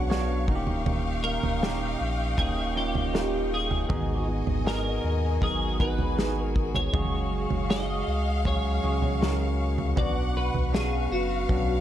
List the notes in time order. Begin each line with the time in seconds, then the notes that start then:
Already playing: B1 B2 F#3 B3 D4 F#4 G#4 B4 C#5 F#5 C#6
0.09 B3 D4 F#4 C#5 F5, snare
0.47 D#1 A#2 D#3 A#3 C#4 D#4 F#4 D#5 F5 G5, kick
0.55 G4
0.67 floor tom
0.86 D#3, floor tom
1.24 A#3 A#4
1.43 D#1, floor tom
1.62 A#3 C#4 D#4 G4, snare
2.00 A#1
2.37 D#1 A#3 C#4 D#4 G#4 G5, kick, floor tom
2.75 A#3 C#4 D#4 F4 G4
2.95 floor tom
3.13 A#3 C#4 D#4 F4, snare
3.54 G#4
3.71 floor tom
3.89 G#1 G#2 D#3 B3 D#4 F#4 G#4 D#5 G#5, kick, floor tom
4.28 B3
4.47 G#1, floor tom
4.65 B3 D#4 F#4 G#4 A#4, snare
5.04 D#2
5.41 G#1 F#3 B3 D#4 F#4 G#4 A#4, kick, floor tom
5.79 B3 D#4 F#4 G#4 B4, kick
5.98 floor tom
6.17 B3 D#4 F#4 G#4, snare
6.42 A#4
6.56 kick
6.74 C#5, floor tom
6.93 F#1 F#2 C#3 G#3 C#4 F#4 G#4 F5 C#6, kick, floor tom
7.32 C#4
7.50 F#1, floor tom
7.69 G#3 C#4 F#4 G#4 D#5, snare
8.07 C#2
8.45 F#3 G#3 C#4 F#4 G#4 C#5, kick, floor tom
8.82 C#2 G#3 C#4 F#4 G#4
9.02 floor tom
9.21 G#3 C#4 F#4 A#4, snare
9.78 floor tom
9.96 B1 B2 F#3 B3 D4 F#4 B4 D5 F#5, kick, floor tom
10.36 D4 B4
10.54 B1, floor tom
10.72 B3 C#4 D4 F#4 G#4 F5, snare
11.11 F#1 F#4
11.49 B1 F#3 B3 C#4 D4 F#4, kick, floor tom